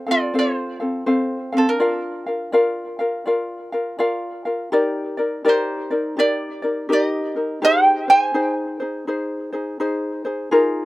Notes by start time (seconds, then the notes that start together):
Already playing: F5
0.07 C4 A4 F5
0.11 F4 D5
0.34 C4 A4 C5 F5
0.39 F4 C#5
0.56 C5
0.80 C4 A4 F5
1.06 C4 A4 C5 F5
1.52 C4 A4 F5
1.57 C4 A4
1.69 D4 A#4
1.80 F4 A#4 D5 F5
2.26 F4 A#4 F5
2.52 F4 A#4 D5 F5
2.99 F4 A#4 F5
3.26 F4 A#4 D5 F5
3.72 F4 A#4 F5
3.99 F4 A#4 D5 F5
4.45 F4 A#4 F5
4.72 D#4 G4 A#4 D5
5.17 D#4 A#4 D5
5.45 D#4 G4 A#4 D5
5.49 C5
5.91 D#4 A#4 D5
6.17 D#4 G4 A#4 D5
6.62 D#4 A#4 D5
6.89 D#4 G4 A#4
6.93 D5
7.04 D#5
7.36 D#4 A#4
7.62 D#4 G4 G#4 C5 G5
8.08 D#4 G#4 C5 G#5
8.34 D#4 G#4 C5
8.80 D#4 G#4 C5
9.07 D#4 G#4 C5
9.53 D#4 G#4 C5
9.80 D#4 G#4 C5
10.25 D#4 G#4 C5
10.51 D#4 F4 G#4 A#4